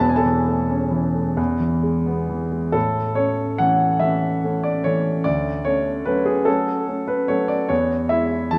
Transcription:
0.00 E1 E2
0.10 G#5
0.16 A4 A5
0.24 E3
0.48 A3
0.70 C#4
0.91 E3
1.15 A3
1.37 E2
1.60 E3
1.83 G#3
2.06 B3
2.30 E3
2.52 G#3
2.72 A2 A4
3.15 A3 C#4 C#5
3.58 E3 A3 C#4 F#5
4.00 E3 A3 C#4 E5
4.44 A3 C#4
4.64 D5
4.84 E3 A3 C#4 C#5
5.24 D2 D5
5.65 A3 C#4 C#5
6.05 F#3 A3 C#4 B4
6.26 G#4
6.45 F#3 A3 C#4 A4
6.88 A3 C#4
7.08 B4
7.28 F#3 A3 C#4 C#5
7.48 D5
7.69 E2 C#5
8.09 G#3 E4 E5
8.51 E3 G#3 E4 A5

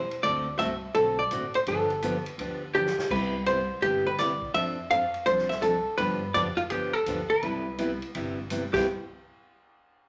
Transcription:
Already playing: C5
0.11 ride
0.23 D2 D3 A3 C4 F#4 A4 D5, ride
0.58 C2 D3 A3 C4 F#4 A4 E5, hi-hat pedal, ride
0.95 B1 D3 A3 C4 F#4 A4, ride
1.19 D5
1.31 A1 D3 A3 C4 F#4 A4, hi-hat pedal, ride
1.54 C5, ride
1.66 G1 D3 F3 B3 D4 G4 A4, ride
1.90 ride
2.02 D3 F3 B3 D4 G4, hi-hat pedal, ride
2.26 ride
2.38 D2 D3 F3 B3 D4 G4, ride
2.74 D3 F3 B3 D4 G4, hi-hat pedal
2.87 snare
2.98 snare
3.10 C2 C3 G3 B3 E4 G4 B4, kick, crash
3.46 C3 G3 B3 E4 G4 C5, hi-hat pedal, ride
3.82 G1 C3 G3 B3 E4 G4, ride
4.07 B4
4.18 C3 G3 B3 E4 G4 D5, snare, hi-hat pedal, ride
4.42 kick
4.54 F2 F3 C4 D4 A4 E5, ride
4.90 F3 C4 D4 A4 F5, hi-hat pedal, ride
5.14 ride
5.26 C2 F3 C4 D4 A4 C5, ride
5.38 snare
5.49 E5, snare
5.62 F3 C4 D4 A4, hi-hat pedal, ride
5.98 G2 D3 F3 B3 D4 G4 B4, ride
6.34 F2 D3 F3 B3 D4 G4 D5, hi-hat pedal, ride
6.57 F4, ride
6.70 E2 D3 F3 B3 D4 G4, ride
6.93 A4
7.06 D2 D3 F3 B3 D4 G4, hi-hat pedal, ride
7.30 B4
7.43 C2 C3 G3 B3 E4 G4, ride
7.78 C3 G3 B3 E4 G4, hi-hat pedal, ride
8.02 ride
8.15 G1 C3 G3 B3 E4 G4, ride
8.50 C3 G3 B3 E4 G4, hi-hat pedal, ride
8.74 C2 C3 G3 B3 E4 G4, kick, snare, crash

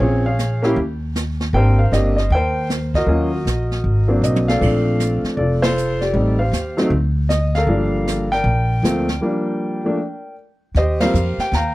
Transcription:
Already playing: C#5
0.00 A#1 C4 C#4 F4 G#4, brush sweep
0.26 G#4 C#5 F5
0.39 snare, hi-hat pedal
0.63 A#3 C#4 E4 G4, snare
0.76 D#2, brush sweep
1.16 snare, hi-hat pedal
1.40 snare
1.53 G#1 A#3 C4 D4 G4 A#4 C5 G5, brush sweep
1.79 F5
1.91 G1 A#3 C4 D4 G4 D#5, snare, hi-hat pedal
2.17 D#5, snare
2.30 D#2 G5, brush sweep
2.35 A#4 C5
2.70 snare, hi-hat pedal
2.94 F#4 A#4 D#5, kick, snare
3.06 D#2 F#3 A#3 C#4 F4, brush sweep
3.45 A#1, snare, hi-hat pedal
3.71 snare
3.84 G#1, brush sweep
4.08 F#3 A#3 C4 D4
4.22 B1 D#5, hi-hat pedal
4.36 high tom
4.48 A4 D5 F5, snare
4.60 A#1 F3 A3 C4 D4, brush sweep, kick, crash
5.00 snare, hi-hat pedal
5.23 muted upright bass stroke, snare
5.37 F1 F4 A4 D5, brush sweep
5.62 F4 A4 C5, snare, ride
5.78 hi-hat pedal
6.00 G4 D5, snare
6.13 A1 G3 A3 C4 D#4, brush sweep
6.39 C5 F5
6.52 D#2, snare, hi-hat pedal
6.77 F#3 A3 C4 D#4, snare
6.90 D2, brush sweep
7.29 D#5, snare, hi-hat pedal
7.55 A4 A#4 F5, snare
7.67 G1 F3 G3 A#3 D4, brush sweep
8.08 snare, hi-hat pedal
8.32 A#4 D5 G5, snare
8.44 A#1, brush sweep
8.82 D2 F3 A3 A#3 C4, snare, hi-hat pedal
9.09 snare
9.21 F3 G3 A#3 D4
9.84 F3 A3 A#3 D4
10.75 D#2 G4 C5 D#5, brush sweep, snare
11.00 F3 G3 A#3 C4 A#4 C5 F5, snare, ride
11.14 F2, hi-hat pedal
11.38 G5, muted upright bass stroke, snare
11.52 D#2 A#5, brush sweep, snare
11.56 F5 G5

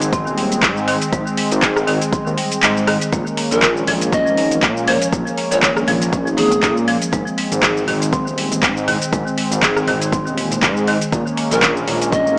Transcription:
Already playing: G#1 G#3 C4
0.02 closed hi-hat, shaker
0.13 C4, kick, closed hi-hat, shaker
0.26 D#1, shaker
0.38 G3, open hi-hat
0.52 closed hi-hat, shaker
0.63 G#2 G#3, kick, clap, closed hi-hat, shaker
0.77 shaker
0.88 D#3, open hi-hat
1.02 closed hi-hat, shaker
1.13 G#1 G#3, kick, closed hi-hat, shaker
1.27 shaker
1.37 G#3, open hi-hat
1.51 G#1, closed hi-hat, shaker
1.62 G#4, kick, clap, closed hi-hat, shaker
1.76 cross-stick, shaker
1.87 G#1 D#3, open hi-hat
2.02 closed hi-hat, shaker
2.12 C4, kick, closed hi-hat, shaker
2.26 D#2, shaker
2.38 G3, open hi-hat
2.52 closed hi-hat, shaker
2.62 G#2 G#3, clap, closed hi-hat, shaker
2.77 shaker
2.87 D#3, cross-stick, open hi-hat
3.01 closed hi-hat, shaker
3.12 A#1 A#3 C#4, kick, closed hi-hat, low conga, shaker
3.27 muted conga, shaker
3.37 A#3, open hi-hat
3.51 A#1 A#4, closed hi-hat, muted conga, high conga, shaker
3.62 A#4, kick, clap, closed hi-hat, high conga, shaker
3.77 shaker
3.87 A#1 F3, open hi-hat, muted conga, high conga, low conga
4.01 closed hi-hat, shaker
4.13 C#4 D#5, kick, closed hi-hat, shaker
4.26 G#1, shaker
4.37 A#3, open hi-hat, muted conga
4.51 closed hi-hat, high conga, shaker
4.63 A#2 A#3, kick, clap, closed hi-hat, high conga, shaker
4.77 shaker
4.88 F3 C#5, open hi-hat, low conga
5.02 closed hi-hat, muted conga, shaker
5.12 A#1 A#3, kick, closed hi-hat, low conga, shaker
5.27 muted conga, shaker
5.38 A#3, open hi-hat
5.51 A#1 C#5, closed hi-hat, muted conga, shaker
5.63 A#4 C#5, kick, clap, closed hi-hat, high conga, shaker
5.77 cross-stick, shaker
5.87 A#1 F3, open hi-hat, muted conga, high conga, low conga
6.02 closed hi-hat, shaker
6.13 C#4, kick, closed hi-hat, shaker
6.27 G#1, shaker
6.37 A#3 G#4, open hi-hat, muted conga, high conga
6.51 closed hi-hat, low conga, shaker
6.62 A#2 A#3, kick, clap, closed hi-hat, muted conga, low conga, shaker
6.77 shaker
6.88 F3, open hi-hat
7.02 closed hi-hat, muted conga, shaker
7.12 G#1 G#3 C4, kick, closed hi-hat, low conga, shaker
7.27 muted conga, shaker
7.38 G#3, open hi-hat
7.51 G#1, closed hi-hat, muted conga, high conga, shaker
7.63 G#4, kick, clap, closed hi-hat, high conga, shaker
7.77 shaker
7.87 G#1 D#3, open hi-hat, muted conga, high conga, low conga
8.02 closed hi-hat, shaker
8.13 C4, kick, closed hi-hat, shaker
8.27 D#1, shaker
8.38 G#3, open hi-hat, muted conga
8.52 closed hi-hat, high conga, shaker
8.62 G#2 G#3, kick, clap, closed hi-hat, muted conga, high conga, shaker
8.77 shaker
8.88 D#3, open hi-hat, low conga
9.02 closed hi-hat, muted conga, shaker
9.13 G#1 G#3, kick, closed hi-hat, low conga, shaker
9.27 muted conga, shaker
9.38 G#3, open hi-hat
9.51 G#1, closed hi-hat, muted conga, high conga, shaker
9.62 G#4, kick, clap, closed hi-hat, high conga, shaker
9.77 cross-stick, shaker
9.87 G#1 D#3, open hi-hat, muted conga, high conga, low conga
10.02 closed hi-hat, shaker
10.12 C4, kick, closed hi-hat, shaker
10.26 D#1, shaker
10.38 G#3, open hi-hat, muted conga, high conga
10.51 closed hi-hat, low conga, shaker
10.62 G#2 G#3, kick, clap, closed hi-hat, muted conga, low conga, shaker
10.77 shaker
10.87 D#3, open hi-hat
11.01 closed hi-hat, muted conga, shaker
11.12 A#1 A#3 C#4, kick, closed hi-hat, low conga, shaker
11.27 muted conga, shaker
11.37 A#3, open hi-hat
11.51 A#1 A#4, closed hi-hat, muted conga, high conga, shaker
11.62 A#4, kick, clap, closed hi-hat, high conga, shaker
11.77 shaker
11.87 A#1 A#3, open hi-hat, muted conga, high conga, low conga
12.02 closed hi-hat, shaker
12.12 C#4 D#5, kick, closed hi-hat, shaker
12.26 G#1, shaker

